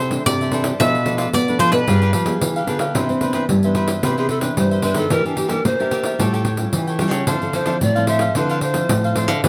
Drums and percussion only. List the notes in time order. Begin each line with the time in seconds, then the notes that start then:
0.11 pandeiro
0.26 pandeiro
0.41 pandeiro
0.52 pandeiro
0.64 pandeiro
0.80 pandeiro
0.95 pandeiro
1.06 pandeiro
1.18 pandeiro
1.33 pandeiro
1.48 pandeiro
1.59 pandeiro
1.72 pandeiro
1.88 pandeiro
2.02 pandeiro
2.13 pandeiro
2.26 pandeiro
2.41 pandeiro
2.56 pandeiro
2.67 pandeiro
2.79 pandeiro
2.95 pandeiro
3.09 pandeiro
3.21 pandeiro
3.33 pandeiro
3.49 pandeiro
3.63 pandeiro
3.75 pandeiro
3.88 pandeiro
4.03 pandeiro
4.18 pandeiro
4.29 pandeiro
4.41 pandeiro
4.57 pandeiro
4.71 pandeiro
4.82 pandeiro
4.94 pandeiro
5.10 pandeiro
5.26 pandeiro
5.37 pandeiro
5.49 pandeiro
5.65 pandeiro
5.80 pandeiro
5.91 pandeiro
6.04 pandeiro
6.19 pandeiro
6.34 pandeiro
6.45 pandeiro
6.57 pandeiro
6.73 pandeiro
6.87 pandeiro
6.99 pandeiro
7.11 pandeiro
7.27 pandeiro
7.42 pandeiro
7.53 pandeiro
7.66 pandeiro
7.81 pandeiro
7.96 pandeiro
8.07 pandeiro
8.19 pandeiro
8.35 pandeiro
8.49 pandeiro
8.61 pandeiro
8.74 pandeiro
8.89 pandeiro
9.04 pandeiro
9.16 pandeiro
9.28 pandeiro
9.44 pandeiro